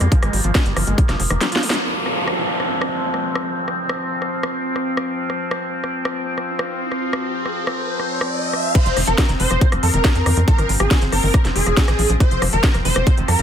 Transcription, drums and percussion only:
0.01 cross-stick soft
0.01 closed hi-hat medium
0.12 kick loud
0.12 closed hi-hat medium
0.23 cross-stick medium
0.23 closed hi-hat medium
0.33 open hi-hat loud
0.44 closed hi-hat medium
0.55 kick loud
0.55 cross-stick soft
0.55 snare loud
0.55 closed hi-hat medium
0.66 closed hi-hat medium
0.77 cross-stick medium
0.77 open hi-hat loud
0.87 closed hi-hat medium
0.98 kick loud
0.98 closed hi-hat medium
1.09 cross-stick soft
1.09 snare soft
1.09 closed hi-hat medium
1.20 open hi-hat loud
1.30 cross-stick medium
1.30 closed hi-hat medium
1.41 snare medium
1.41 closed hi-hat medium
1.52 snare medium
1.52 closed hi-hat medium
1.63 open hi-hat loud
1.70 snare loud
1.70 closed hi-hat medium
2.06 cross-stick soft
2.28 cross-stick medium
2.60 cross-stick soft
2.82 cross-stick medium
3.14 cross-stick soft
3.35 cross-stick medium
3.68 cross-stick soft
3.89 cross-stick medium
4.22 cross-stick soft
4.43 cross-stick medium
4.76 cross-stick soft
4.97 cross-stick medium
5.30 cross-stick soft
5.51 cross-stick medium
5.84 cross-stick soft
6.05 cross-stick medium
6.38 cross-stick soft
6.59 cross-stick medium
6.92 cross-stick soft
7.13 cross-stick medium
7.46 cross-stick soft
7.67 cross-stick medium
8.00 cross-stick soft
8.21 cross-stick medium
8.53 cross-stick soft
8.75 kick loud
8.75 closed hi-hat medium
8.75 crash loud
8.86 closed hi-hat medium
8.97 cross-stick soft
8.97 open hi-hat loud
9.07 closed hi-hat medium
9.18 kick loud
9.18 cross-stick medium
9.18 snare loud
9.18 closed hi-hat medium
9.29 closed hi-hat medium
9.40 open hi-hat loud
9.51 cross-stick soft
9.51 closed hi-hat medium
9.61 kick loud
9.61 closed hi-hat medium
9.72 cross-stick medium
9.72 closed hi-hat medium
9.83 open hi-hat loud
9.94 closed hi-hat medium
10.05 kick loud
10.05 cross-stick soft
10.05 snare loud
10.05 closed hi-hat medium
10.15 closed hi-hat medium
10.26 cross-stick medium
10.26 open hi-hat loud
10.37 closed hi-hat medium
10.48 kick loud
10.48 closed hi-hat medium
10.58 cross-stick soft
10.58 closed hi-hat medium
10.69 open hi-hat loud
10.80 cross-stick medium
10.80 closed hi-hat medium
10.91 kick loud
10.91 snare loud
10.91 closed hi-hat medium
11.02 closed hi-hat medium
11.12 cross-stick soft
11.12 open hi-hat loud
11.23 open hi-hat medium
11.34 kick loud
11.34 cross-stick medium
11.34 closed hi-hat medium
11.45 snare soft
11.45 closed hi-hat medium
11.56 open hi-hat loud
11.66 cross-stick soft
11.66 closed hi-hat medium
11.77 kick loud
11.77 snare loud
11.77 closed hi-hat medium
11.88 cross-stick medium
11.88 closed hi-hat medium
11.99 open hi-hat loud
12.10 closed hi-hat medium
12.20 kick loud
12.20 cross-stick soft
12.20 closed hi-hat medium
12.31 closed hi-hat medium
12.42 cross-stick medium
12.42 open hi-hat loud
12.53 closed hi-hat medium
12.64 kick loud
12.64 snare loud
12.64 closed hi-hat medium
12.74 cross-stick soft
12.74 closed hi-hat soft
12.85 open hi-hat loud
12.96 cross-stick medium
12.96 closed hi-hat medium
13.07 kick loud
13.07 closed hi-hat medium
13.18 closed hi-hat medium
13.28 cross-stick soft
13.28 open hi-hat loud
13.39 closed hi-hat medium

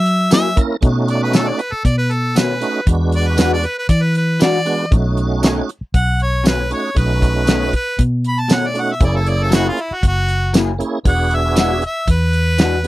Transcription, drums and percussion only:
0.06 closed hi-hat medium
0.31 snare loud
0.31 closed hi-hat medium
0.31 tambourine loud
0.57 kick loud
0.57 closed hi-hat medium
0.82 kick loud
0.82 closed hi-hat medium
1.08 closed hi-hat medium
1.33 snare loud
1.33 closed hi-hat medium
1.33 tambourine loud
1.59 closed hi-hat medium
1.85 kick medium
1.85 closed hi-hat medium
2.11 closed hi-hat medium
2.36 snare loud
2.36 closed hi-hat medium
2.36 tambourine loud
2.61 closed hi-hat medium
2.87 kick loud
2.87 closed hi-hat medium
3.12 closed hi-hat medium
3.38 snare loud
3.38 closed hi-hat medium
3.38 tambourine loud
3.63 closed hi-hat medium
3.89 kick medium
3.89 closed hi-hat medium
4.15 closed hi-hat medium
4.40 snare loud
4.40 closed hi-hat medium
4.40 tambourine loud
4.66 closed hi-hat medium
4.92 kick loud
4.92 closed hi-hat medium
5.17 closed hi-hat medium
5.43 snare loud
5.43 closed hi-hat medium
5.43 tambourine loud
5.69 closed hi-hat medium
5.94 kick medium
5.94 closed hi-hat medium
6.20 closed hi-hat soft
6.45 snare loud
6.45 closed hi-hat medium
6.45 tambourine loud
6.71 closed hi-hat medium
6.96 kick loud
6.96 closed hi-hat medium
7.22 kick medium
7.22 closed hi-hat medium
7.47 snare loud
7.47 closed hi-hat medium
7.47 tambourine loud
7.73 kick medium
7.73 closed hi-hat medium
7.99 kick medium
7.99 closed hi-hat medium
8.24 closed hi-hat medium
8.49 snare loud
8.49 closed hi-hat medium
8.49 tambourine loud
8.75 closed hi-hat medium
9.00 kick loud
9.00 closed hi-hat medium
9.26 closed hi-hat medium
9.52 snare loud
9.52 closed hi-hat medium
9.52 tambourine loud
9.77 closed hi-hat medium
10.03 kick medium
10.03 closed hi-hat medium
10.28 closed hi-hat medium
10.54 snare loud
10.54 closed hi-hat medium
10.54 tambourine loud
10.80 closed hi-hat medium
11.05 kick loud
11.05 closed hi-hat medium
11.31 closed hi-hat medium
11.56 snare loud
11.56 closed hi-hat medium
11.56 tambourine loud
11.82 closed hi-hat medium
12.08 kick medium
12.08 closed hi-hat medium
12.33 closed hi-hat medium
12.58 snare loud
12.58 closed hi-hat medium
12.58 tambourine loud
12.84 closed hi-hat medium

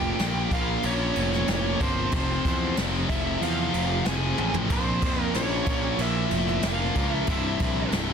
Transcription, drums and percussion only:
0.19 snare loud
0.19 crash medium
0.51 kick medium
0.51 crash medium
0.83 crash medium
1.16 crash medium
1.33 snare soft
1.48 snare loud
1.48 crash medium
1.80 kick medium
1.80 crash medium
2.12 kick loud
2.12 crash medium
2.45 kick loud
2.45 crash medium
2.77 snare loud
2.77 crash medium
3.09 kick medium
3.09 crash medium
3.42 crash medium
3.74 crash medium
4.05 snare loud
4.05 crash medium
4.38 high tom medium
4.54 floor tom medium
4.70 kick loud
4.70 splash medium
4.70 crash medium
5.02 kick loud
5.02 crash medium
5.34 snare loud
5.34 crash medium
5.66 kick medium
5.66 crash medium
5.99 crash medium
6.31 crash medium
6.48 snare soft
6.62 snare loud
6.62 crash medium
6.95 kick medium
6.95 crash medium
7.27 kick loud
7.27 crash medium
7.59 kick loud
7.59 crash medium
7.92 snare loud
7.92 crash medium

